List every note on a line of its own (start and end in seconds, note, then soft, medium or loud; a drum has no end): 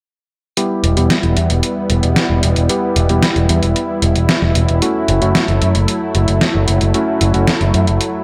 0.57 0.94 G3 medium
0.57 4.78 G3 medium
0.57 0.94 B3 medium
0.57 4.78 B3 medium
0.57 0.94 E4 medium
0.57 8.24 E4 medium
0.57 0.94 G4 medium
0.57 closed hi-hat medium
0.84 0.94 E1 medium
0.84 closed hi-hat medium
0.97 1.07 E1 medium
0.97 1.12 G3 medium
0.97 1.12 B3 medium
0.97 1.12 E4 medium
0.97 1.12 G4 loud
0.97 closed hi-hat soft
1.10 snare loud
1.10 closed hi-hat medium
1.23 1.34 E1 medium
1.23 closed hi-hat soft
1.37 1.47 E2 medium
1.37 closed hi-hat medium
1.50 1.60 E1 medium
1.50 closed hi-hat soft
1.63 closed hi-hat medium
1.90 2.00 E1 medium
1.90 closed hi-hat medium
2.03 2.13 E1 medium
2.03 closed hi-hat soft
2.16 snare loud
2.16 closed hi-hat medium
2.30 2.40 E1 medium
2.43 2.53 E1 medium
2.43 closed hi-hat medium
2.56 2.67 E1 medium
2.56 closed hi-hat soft
2.69 3.06 G3 medium
2.69 3.06 B3 medium
2.69 3.06 E4 medium
2.69 3.06 G4 medium
2.69 closed hi-hat medium
2.96 3.07 E1 medium
2.96 closed hi-hat medium
3.09 3.20 E1 medium
3.09 3.24 G3 medium
3.09 3.24 B3 medium
3.09 3.24 E4 medium
3.09 3.24 G4 medium
3.09 closed hi-hat soft
3.23 snare loud
3.23 closed hi-hat medium
3.36 3.46 E1 medium
3.36 closed hi-hat soft
3.49 3.60 E2 medium
3.49 closed hi-hat medium
3.62 3.73 E1 medium
3.62 closed hi-hat soft
3.76 closed hi-hat medium
4.02 4.13 E1 medium
4.02 closed hi-hat medium
4.16 4.26 E1 medium
4.16 closed hi-hat soft
4.29 snare loud
4.29 closed hi-hat medium
4.42 4.53 E1 medium
4.42 snare soft
4.55 4.66 E1 medium
4.55 closed hi-hat medium
4.69 4.79 E1 medium
4.69 closed hi-hat soft
4.82 8.24 F#3 medium
4.82 8.24 A3 medium
4.82 5.19 A3 medium
4.82 5.19 C#4 medium
4.82 5.19 E4 medium
4.82 5.19 F#4 medium
4.82 closed hi-hat medium
5.08 5.19 F#1 medium
5.08 closed hi-hat medium
5.22 5.32 F#1 medium
5.22 5.37 A3 medium
5.22 5.37 C#4 medium
5.22 5.37 E4 medium
5.22 5.37 F#4 medium
5.22 closed hi-hat soft
5.35 snare loud
5.35 closed hi-hat medium
5.48 5.59 F#1 medium
5.48 closed hi-hat soft
5.62 5.72 F#2 medium
5.62 closed hi-hat medium
5.75 5.85 F#1 medium
5.75 closed hi-hat soft
5.88 closed hi-hat medium
6.15 6.25 F#1 medium
6.15 closed hi-hat medium
6.28 6.38 F#1 medium
6.28 closed hi-hat soft
6.41 snare loud
6.41 closed hi-hat medium
6.55 6.65 F#1 medium
6.68 6.78 F#1 medium
6.68 closed hi-hat medium
6.81 6.92 F#1 medium
6.81 closed hi-hat soft
6.94 7.31 A3 medium
6.94 7.31 C#4 medium
6.94 7.31 E4 medium
6.94 7.31 F#4 medium
6.94 closed hi-hat medium
7.21 7.31 F#1 medium
7.21 closed hi-hat medium
7.34 7.45 F#1 medium
7.34 7.49 A3 medium
7.34 7.49 C#4 medium
7.34 7.49 E4 medium
7.34 7.49 F#4 medium
7.34 closed hi-hat soft
7.47 snare loud
7.47 closed hi-hat medium
7.61 7.71 F#1 medium
7.61 closed hi-hat soft
7.74 7.84 F#2 medium
7.74 closed hi-hat medium
7.87 7.98 F#1 medium
7.87 closed hi-hat soft
8.01 closed hi-hat medium